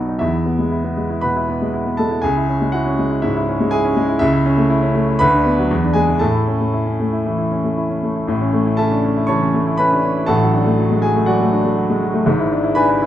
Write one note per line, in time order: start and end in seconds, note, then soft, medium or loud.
0.00 0.19 B1 medium
0.00 0.24 F#3 soft
0.00 0.25 B3 soft
0.00 0.08 D#4 medium
0.00 0.25 B4 soft
0.00 0.24 B5 medium
0.08 0.21 D#4 soft
0.19 1.20 E2 medium
0.19 0.32 E4 medium
0.19 1.22 E5 medium
0.33 0.54 E4 medium
0.46 0.66 B3 soft
0.59 0.79 G#3 soft
0.71 0.92 E4 medium
0.84 1.05 B3 soft
0.97 1.18 G#3 soft
1.10 1.31 E4 soft
1.21 1.44 B2 soft
1.21 1.94 B4 medium
1.21 1.98 B5 medium
1.36 1.56 E4 medium
1.49 1.69 B3 medium
1.62 1.82 G#3 medium
1.74 1.94 E4 medium
1.86 2.06 B3 medium
1.97 2.19 G#3 medium
1.97 2.22 A4 medium
1.97 2.23 A5 medium
2.11 2.24 E4 medium
2.22 3.20 C#2 medium
2.22 2.70 G#4 medium
2.22 2.73 G#5 medium
2.37 2.57 E4 medium
2.49 2.69 C#4 medium
2.61 2.81 G#3 medium
2.72 2.94 E4 medium
2.72 3.20 F#4 medium
2.72 3.23 F#5 medium
2.86 3.06 C#4 medium
2.98 3.18 G#3 medium
3.11 3.22 E4 medium
3.22 3.44 G#2 medium
3.22 3.35 E4 medium
3.22 3.72 E5 medium
3.36 3.56 E4 medium
3.49 3.68 C#4 medium
3.60 3.80 G#3 medium
3.71 3.92 E4 medium
3.71 4.18 G#4 medium
3.71 4.21 G#5 medium
3.84 4.04 C#4 medium
3.96 4.16 G#3 medium
4.08 4.19 E4 medium
4.19 5.18 C#2 medium
4.19 4.32 E4 medium
4.19 5.20 E5 loud
4.33 4.53 E4 medium
4.46 4.65 C#4 medium
4.57 4.77 A3 medium
4.70 4.90 E4 medium
4.82 5.03 C#4 medium
4.95 5.16 A3 medium
5.08 5.21 E4 medium
5.19 5.70 D2 medium
5.19 5.92 B4 medium
5.19 5.95 B5 loud
5.34 5.54 D4 medium
5.46 5.66 B3 medium
5.59 5.71 F#3 medium
5.71 6.20 E2 medium
5.84 6.04 D4 medium
5.93 6.16 G#3 medium
5.93 6.19 G#4 medium
5.93 6.20 G#5 medium
6.09 6.22 E3 medium
6.19 7.22 A2 medium
6.19 7.99 A4 medium
6.19 8.02 A5 medium
6.34 6.55 E4 medium
6.47 6.68 C#4 medium
6.60 6.82 A3 soft
6.73 6.94 E4 medium
6.86 7.07 C#4 soft
7.00 7.21 A3 soft
7.13 7.34 E4 medium
7.26 7.47 E3 soft
7.38 7.59 E4 medium
7.51 7.72 C#4 soft
7.64 7.85 A3 soft
7.77 7.98 E4 medium
7.90 8.11 C#4 soft
8.03 8.24 A3 soft
8.16 8.29 E4 soft
8.27 9.26 A1 medium
8.27 9.26 A2 medium
8.41 8.62 C#4 medium
8.53 8.74 A3 medium
8.66 8.87 E4 medium
8.77 8.99 C#4 medium
8.77 9.26 A4 medium
8.77 9.26 E5 medium
8.77 9.26 A5 medium
8.92 9.04 D4 medium
9.04 9.25 C#4 medium
9.17 9.37 E4 medium
9.27 9.49 E3 medium
9.27 9.75 C#5 medium
9.27 9.75 A5 medium
9.27 9.78 C#6 medium
9.41 9.62 C#4 medium
9.54 9.75 A3 medium
9.67 9.87 E4 medium
9.78 9.99 C#4 medium
9.78 10.25 B4 medium
9.78 10.28 B5 medium
9.92 10.05 D4 medium
10.05 10.24 C#4 medium
10.17 10.29 E4 medium
10.26 11.24 A1 medium
10.26 11.25 A2 medium
10.26 10.99 A4 medium
10.26 10.99 F#5 medium
10.26 11.02 A5 medium
10.42 10.62 F#3 medium
10.54 10.74 D4 medium
10.66 10.86 A3 medium
10.79 10.98 F#3 medium
10.91 11.03 G#3 medium
11.02 11.23 F#3 medium
11.02 11.26 G#4 medium
11.02 11.27 G#5 medium
11.16 11.35 A3 medium
11.26 11.48 F#3 medium
11.26 12.23 F#4 medium
11.26 12.23 D5 medium
11.26 12.26 F#5 medium
11.41 11.60 A3 medium
11.52 11.72 D4 medium
11.64 11.85 A3 medium
11.77 11.97 F#3 medium
11.90 12.02 G#3 medium
12.02 12.22 F#3 medium
12.14 12.27 A3 medium
12.26 13.06 G#1 medium
12.26 13.06 G#2 medium
12.39 12.59 E4 medium
12.51 12.72 D4 medium
12.63 12.84 E4 medium
12.75 12.97 D4 medium
12.75 13.06 B4 medium
12.75 13.06 G#5 medium
12.75 13.06 B5 medium
12.89 13.01 E4 medium
13.02 13.06 E4 medium